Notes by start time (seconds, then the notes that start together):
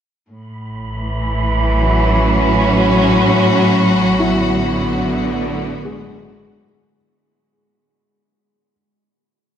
0.29 A1 A2 B5
0.95 E3
1.58 F#3
1.80 C#4 F#4
3.63 A1
4.14 B3
4.19 E4
4.31 D3
5.85 G#3